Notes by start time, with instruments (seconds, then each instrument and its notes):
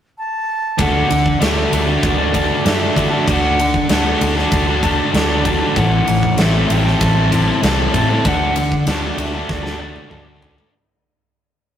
0.18 flute A5
0.78 fingered electric bass D2, overdriven electric guitar D3 A3 D4 F#4 A4, flute F#5, kick, ride
1.09 fingered electric bass D2, muted overdriven electric guitar stroke, ride
1.26 kick
1.40 fingered electric bass D2, overdriven electric guitar D3 A3 D4 F#4 A4, flute E5, snare, ride
1.56 overdriven electric guitar D4 F#4 A4
1.72 fingered electric bass D2, overdriven electric guitar A3 D4 F#4 A4, ride
1.87 overdriven electric guitar D4 F#4 A4
2.03 fingered electric bass D2, flute D5, kick, ride
2.18 overdriven electric guitar D4 F#4 A4
2.33 overdriven electric guitar A3 D4 F#4 A4, kick, ride
2.64 fingered electric bass F#2, overdriven electric guitar D3 A3 D4 F#4 A4, snare, ride
2.68 flute E5
2.80 overdriven electric guitar D4 F#4 A4
2.95 fingered electric bass D3, overdriven electric guitar A3 D4 F#4 A4, kick, ride
3.10 overdriven electric guitar D4 F#4 A4
3.27 fingered electric bass D2, overdriven electric guitar D3 A3 D4 F#4 A4, kick, ride
3.31 flute F#5
3.59 muted overdriven electric guitar stroke, ride
3.74 kick
3.89 fingered electric bass D2, overdriven electric guitar D3 A3 D4 F#4 A4, flute F#5, snare, ride
4.06 overdriven electric guitar D4 F#4 A4
4.21 fingered electric bass D2, overdriven electric guitar A3 D4 F#4 A4, ride
4.36 overdriven electric guitar D4 F#4 A4, snare
4.52 fingered electric bass D2, flute A5, kick, ride
4.67 overdriven electric guitar D4 F#4 A4
4.82 overdriven electric guitar A3 D4 F#4, flute A5, kick, ride
4.87 overdriven electric guitar A4
5.14 fingered electric bass D2, overdriven electric guitar D3 A3 D4 F#4, flute A5, snare, ride
5.18 overdriven electric guitar A4
5.31 overdriven electric guitar D4 F#4 A4
5.45 overdriven electric guitar A3 D4 F#4 A4, kick, ride
5.61 overdriven electric guitar D4 F#4 A4
5.75 fingered electric bass A1, overdriven electric guitar A2 E3 A3 C4 E4 A4, flute F#5, kick, ride
6.08 fingered electric bass A1, muted overdriven electric guitar stroke, ride
6.23 kick
6.38 fingered electric bass A1, overdriven electric guitar A2 E3 A3 C4 E4 A4, snare, ride
6.42 flute E5
6.53 overdriven electric guitar A3 C4 E4 A4
6.68 fingered electric bass A1, overdriven electric guitar A3 C4 E4 A4, ride
6.73 flute G5
6.84 overdriven electric guitar A3 C4 E4 A4, snare
7.01 fingered electric bass A1, flute A5, kick, ride
7.16 overdriven electric guitar A3 C4 E4 A4
7.31 overdriven electric guitar A3 C4 E4 A4, flute A5, kick, ride
7.62 fingered electric bass C2, overdriven electric guitar A2 E3 A3 C4 E4 A4, flute A5, snare, ride
7.79 overdriven electric guitar A3 C4 E4 A4
7.94 fingered electric bass A2, overdriven electric guitar A3 C4 E4 A4, kick, ride
8.09 overdriven electric guitar A3 C4 E4 A4
8.25 fingered electric bass D2, overdriven electric guitar D3 A3 D4 F#4 A4, flute F#5, kick, ride
8.55 muted overdriven electric guitar stroke, ride
8.72 kick
8.86 fingered electric bass D2, overdriven electric guitar D3 A3 D4 F#4 A4, snare, ride
9.03 overdriven electric guitar D4 F#4 A4
9.17 fingered electric bass D2, overdriven electric guitar A3 D4 F#4 A4, ride
9.21 flute E5
9.34 overdriven electric guitar D4 F#4 A4
9.49 fingered electric bass D2, flute D5, kick, snare
9.63 overdriven electric guitar D4 F#4 A4, snare
9.79 overdriven electric guitar A3 D4 F#4 A4
9.96 high tom
10.09 fingered electric bass D2, overdriven electric guitar D3 A3 D4 F#4 A4, mid tom
10.26 overdriven electric guitar D4 F#4 A4
10.41 overdriven electric guitar A3 D4 F#4 A4, floor tom
10.56 overdriven electric guitar D4 F#4 A4, floor tom